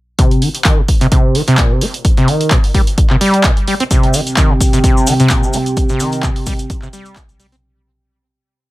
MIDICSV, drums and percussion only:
0, 0, Header, 1, 2, 480
1, 0, Start_track
1, 0, Key_signature, -3, "minor"
1, 0, Tempo, 465116
1, 193, Time_signature, 4, 2, 24, 8
1, 8983, End_track
2, 0, Start_track
2, 0, Title_t, "Drums"
2, 192, Note_on_c, 9, 42, 77
2, 193, Note_on_c, 9, 36, 108
2, 296, Note_off_c, 9, 36, 0
2, 296, Note_off_c, 9, 42, 0
2, 323, Note_on_c, 9, 42, 34
2, 427, Note_off_c, 9, 42, 0
2, 433, Note_on_c, 9, 46, 98
2, 536, Note_off_c, 9, 46, 0
2, 564, Note_on_c, 9, 42, 53
2, 667, Note_off_c, 9, 42, 0
2, 668, Note_on_c, 9, 39, 111
2, 673, Note_on_c, 9, 36, 114
2, 673, Note_on_c, 9, 42, 76
2, 771, Note_off_c, 9, 39, 0
2, 776, Note_off_c, 9, 36, 0
2, 776, Note_off_c, 9, 42, 0
2, 912, Note_on_c, 9, 46, 96
2, 913, Note_on_c, 9, 36, 76
2, 1016, Note_off_c, 9, 36, 0
2, 1016, Note_off_c, 9, 46, 0
2, 1044, Note_on_c, 9, 42, 47
2, 1147, Note_off_c, 9, 42, 0
2, 1153, Note_on_c, 9, 36, 112
2, 1153, Note_on_c, 9, 42, 76
2, 1256, Note_off_c, 9, 36, 0
2, 1256, Note_off_c, 9, 42, 0
2, 1393, Note_on_c, 9, 46, 100
2, 1496, Note_off_c, 9, 46, 0
2, 1524, Note_on_c, 9, 42, 51
2, 1627, Note_off_c, 9, 42, 0
2, 1628, Note_on_c, 9, 39, 113
2, 1633, Note_on_c, 9, 36, 114
2, 1633, Note_on_c, 9, 42, 75
2, 1731, Note_off_c, 9, 39, 0
2, 1736, Note_off_c, 9, 36, 0
2, 1736, Note_off_c, 9, 42, 0
2, 1872, Note_on_c, 9, 46, 101
2, 1975, Note_off_c, 9, 46, 0
2, 2003, Note_on_c, 9, 42, 50
2, 2107, Note_off_c, 9, 42, 0
2, 2112, Note_on_c, 9, 42, 76
2, 2113, Note_on_c, 9, 36, 113
2, 2216, Note_off_c, 9, 36, 0
2, 2216, Note_off_c, 9, 42, 0
2, 2244, Note_on_c, 9, 42, 33
2, 2347, Note_off_c, 9, 42, 0
2, 2353, Note_on_c, 9, 46, 98
2, 2456, Note_off_c, 9, 46, 0
2, 2484, Note_on_c, 9, 42, 50
2, 2587, Note_off_c, 9, 42, 0
2, 2588, Note_on_c, 9, 39, 115
2, 2592, Note_on_c, 9, 42, 74
2, 2593, Note_on_c, 9, 36, 120
2, 2691, Note_off_c, 9, 39, 0
2, 2696, Note_off_c, 9, 36, 0
2, 2696, Note_off_c, 9, 42, 0
2, 2724, Note_on_c, 9, 46, 60
2, 2827, Note_off_c, 9, 46, 0
2, 2833, Note_on_c, 9, 36, 78
2, 2833, Note_on_c, 9, 46, 105
2, 2936, Note_off_c, 9, 36, 0
2, 2936, Note_off_c, 9, 46, 0
2, 2964, Note_on_c, 9, 42, 45
2, 3067, Note_off_c, 9, 42, 0
2, 3073, Note_on_c, 9, 36, 120
2, 3073, Note_on_c, 9, 42, 76
2, 3176, Note_off_c, 9, 36, 0
2, 3176, Note_off_c, 9, 42, 0
2, 3199, Note_on_c, 9, 39, 37
2, 3303, Note_off_c, 9, 39, 0
2, 3313, Note_on_c, 9, 46, 105
2, 3416, Note_off_c, 9, 46, 0
2, 3444, Note_on_c, 9, 42, 52
2, 3547, Note_off_c, 9, 42, 0
2, 3549, Note_on_c, 9, 39, 119
2, 3553, Note_on_c, 9, 36, 115
2, 3553, Note_on_c, 9, 42, 75
2, 3652, Note_off_c, 9, 39, 0
2, 3656, Note_off_c, 9, 36, 0
2, 3656, Note_off_c, 9, 42, 0
2, 3684, Note_on_c, 9, 42, 34
2, 3787, Note_off_c, 9, 42, 0
2, 3793, Note_on_c, 9, 46, 106
2, 3896, Note_off_c, 9, 46, 0
2, 3924, Note_on_c, 9, 42, 47
2, 4027, Note_off_c, 9, 42, 0
2, 4033, Note_on_c, 9, 36, 116
2, 4033, Note_on_c, 9, 42, 74
2, 4035, Note_on_c, 9, 69, 54
2, 4136, Note_off_c, 9, 36, 0
2, 4136, Note_off_c, 9, 42, 0
2, 4139, Note_off_c, 9, 69, 0
2, 4164, Note_on_c, 9, 42, 35
2, 4267, Note_off_c, 9, 42, 0
2, 4267, Note_on_c, 9, 69, 96
2, 4273, Note_on_c, 9, 46, 105
2, 4370, Note_off_c, 9, 69, 0
2, 4376, Note_off_c, 9, 46, 0
2, 4404, Note_on_c, 9, 42, 51
2, 4410, Note_on_c, 9, 69, 36
2, 4507, Note_off_c, 9, 42, 0
2, 4508, Note_on_c, 9, 39, 118
2, 4513, Note_off_c, 9, 69, 0
2, 4513, Note_on_c, 9, 36, 125
2, 4513, Note_on_c, 9, 42, 75
2, 4513, Note_on_c, 9, 69, 52
2, 4611, Note_off_c, 9, 39, 0
2, 4616, Note_off_c, 9, 36, 0
2, 4616, Note_off_c, 9, 42, 0
2, 4617, Note_off_c, 9, 69, 0
2, 4753, Note_on_c, 9, 36, 87
2, 4753, Note_on_c, 9, 46, 105
2, 4760, Note_on_c, 9, 69, 98
2, 4856, Note_off_c, 9, 36, 0
2, 4856, Note_off_c, 9, 46, 0
2, 4863, Note_off_c, 9, 69, 0
2, 4884, Note_on_c, 9, 42, 46
2, 4886, Note_on_c, 9, 69, 41
2, 4987, Note_off_c, 9, 42, 0
2, 4989, Note_off_c, 9, 69, 0
2, 4993, Note_on_c, 9, 36, 121
2, 4993, Note_on_c, 9, 42, 74
2, 4996, Note_on_c, 9, 69, 48
2, 5096, Note_off_c, 9, 36, 0
2, 5096, Note_off_c, 9, 42, 0
2, 5100, Note_off_c, 9, 69, 0
2, 5132, Note_on_c, 9, 69, 41
2, 5230, Note_off_c, 9, 69, 0
2, 5230, Note_on_c, 9, 69, 94
2, 5233, Note_on_c, 9, 46, 108
2, 5333, Note_off_c, 9, 69, 0
2, 5336, Note_off_c, 9, 46, 0
2, 5362, Note_on_c, 9, 69, 38
2, 5364, Note_on_c, 9, 42, 51
2, 5466, Note_off_c, 9, 69, 0
2, 5467, Note_off_c, 9, 42, 0
2, 5469, Note_on_c, 9, 39, 122
2, 5469, Note_on_c, 9, 69, 58
2, 5473, Note_on_c, 9, 36, 120
2, 5473, Note_on_c, 9, 42, 75
2, 5572, Note_off_c, 9, 39, 0
2, 5573, Note_off_c, 9, 69, 0
2, 5576, Note_off_c, 9, 36, 0
2, 5576, Note_off_c, 9, 42, 0
2, 5608, Note_on_c, 9, 69, 40
2, 5709, Note_off_c, 9, 69, 0
2, 5709, Note_on_c, 9, 69, 98
2, 5713, Note_on_c, 9, 46, 108
2, 5812, Note_off_c, 9, 69, 0
2, 5816, Note_off_c, 9, 46, 0
2, 5844, Note_on_c, 9, 42, 48
2, 5849, Note_on_c, 9, 69, 40
2, 5947, Note_off_c, 9, 42, 0
2, 5953, Note_off_c, 9, 69, 0
2, 5953, Note_on_c, 9, 36, 115
2, 5953, Note_on_c, 9, 42, 74
2, 5953, Note_on_c, 9, 69, 52
2, 6056, Note_off_c, 9, 36, 0
2, 6056, Note_off_c, 9, 42, 0
2, 6056, Note_off_c, 9, 69, 0
2, 6078, Note_on_c, 9, 69, 34
2, 6083, Note_on_c, 9, 42, 34
2, 6181, Note_off_c, 9, 69, 0
2, 6187, Note_off_c, 9, 42, 0
2, 6191, Note_on_c, 9, 69, 89
2, 6193, Note_on_c, 9, 46, 107
2, 6295, Note_off_c, 9, 69, 0
2, 6296, Note_off_c, 9, 46, 0
2, 6317, Note_on_c, 9, 69, 36
2, 6324, Note_on_c, 9, 42, 49
2, 6421, Note_off_c, 9, 69, 0
2, 6427, Note_off_c, 9, 42, 0
2, 6428, Note_on_c, 9, 39, 110
2, 6433, Note_on_c, 9, 36, 123
2, 6433, Note_on_c, 9, 42, 69
2, 6440, Note_on_c, 9, 69, 53
2, 6532, Note_off_c, 9, 39, 0
2, 6536, Note_off_c, 9, 36, 0
2, 6536, Note_off_c, 9, 42, 0
2, 6543, Note_off_c, 9, 69, 0
2, 6564, Note_on_c, 9, 46, 59
2, 6667, Note_off_c, 9, 46, 0
2, 6671, Note_on_c, 9, 69, 93
2, 6673, Note_on_c, 9, 36, 85
2, 6673, Note_on_c, 9, 46, 107
2, 6774, Note_off_c, 9, 69, 0
2, 6776, Note_off_c, 9, 36, 0
2, 6776, Note_off_c, 9, 46, 0
2, 6800, Note_on_c, 9, 69, 42
2, 6804, Note_on_c, 9, 42, 47
2, 6903, Note_off_c, 9, 69, 0
2, 6907, Note_off_c, 9, 42, 0
2, 6913, Note_on_c, 9, 36, 126
2, 6913, Note_on_c, 9, 42, 72
2, 6921, Note_on_c, 9, 69, 55
2, 7016, Note_off_c, 9, 36, 0
2, 7016, Note_off_c, 9, 42, 0
2, 7024, Note_off_c, 9, 69, 0
2, 7039, Note_on_c, 9, 39, 34
2, 7049, Note_on_c, 9, 69, 35
2, 7142, Note_off_c, 9, 39, 0
2, 7152, Note_off_c, 9, 69, 0
2, 7153, Note_on_c, 9, 46, 106
2, 7157, Note_on_c, 9, 69, 94
2, 7256, Note_off_c, 9, 46, 0
2, 7260, Note_off_c, 9, 69, 0
2, 7277, Note_on_c, 9, 69, 43
2, 7284, Note_on_c, 9, 42, 50
2, 7380, Note_off_c, 9, 69, 0
2, 7387, Note_off_c, 9, 42, 0
2, 7388, Note_on_c, 9, 39, 117
2, 7393, Note_on_c, 9, 36, 117
2, 7393, Note_on_c, 9, 42, 74
2, 7397, Note_on_c, 9, 69, 55
2, 7491, Note_off_c, 9, 39, 0
2, 7496, Note_off_c, 9, 36, 0
2, 7496, Note_off_c, 9, 42, 0
2, 7501, Note_off_c, 9, 69, 0
2, 7524, Note_on_c, 9, 42, 34
2, 7524, Note_on_c, 9, 69, 37
2, 7627, Note_off_c, 9, 42, 0
2, 7628, Note_off_c, 9, 69, 0
2, 7632, Note_on_c, 9, 46, 110
2, 7638, Note_on_c, 9, 69, 94
2, 7736, Note_off_c, 9, 46, 0
2, 7741, Note_off_c, 9, 69, 0
2, 7764, Note_on_c, 9, 42, 46
2, 7774, Note_on_c, 9, 69, 43
2, 7867, Note_off_c, 9, 42, 0
2, 7877, Note_off_c, 9, 69, 0
2, 8983, End_track
0, 0, End_of_file